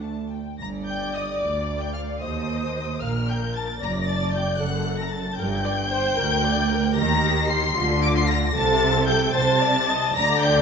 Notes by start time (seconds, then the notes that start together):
Already playing: D2 A3 D4
0.04 A5
0.32 G5
0.58 G1 G2 D5 A#5 A#6
0.86 G5 G6
1.12 D#5 D#6
1.39 D2 D5 D6
1.79 G5 G6
1.93 F5 F6
2.19 D#2 C5 D#5 D#6
3.00 A#1 A#2 A#4 F5 F6
3.28 G5 G6
3.56 A5 A6
3.80 F#1 F#2 D5 A#5 A#6
4.07 A5 A6
4.33 G5 G6
4.58 F#1 F#2 A4 F#5 F#6
4.98 A#6
5.02 A#5
5.11 A5 A6
5.36 G1 G2 A#4 G5 G6
5.65 D5
5.90 C5
6.15 D2 A#4
6.43 D5
6.70 A#4
6.96 D#2 D#3 G4 A#5 A#6
7.49 C6 C7
7.76 D2 D3 F4
8.02 D6 D7
8.16 C6 C7
8.28 A#5 A#6
8.55 C2 C3 A4 A5 A6
9.07 G5 G6
9.34 C2 C3 C5 A5 A6
9.61 D5
9.88 D#5
10.15 D2 D3 D5 A#5 A#6
10.41 G5 G6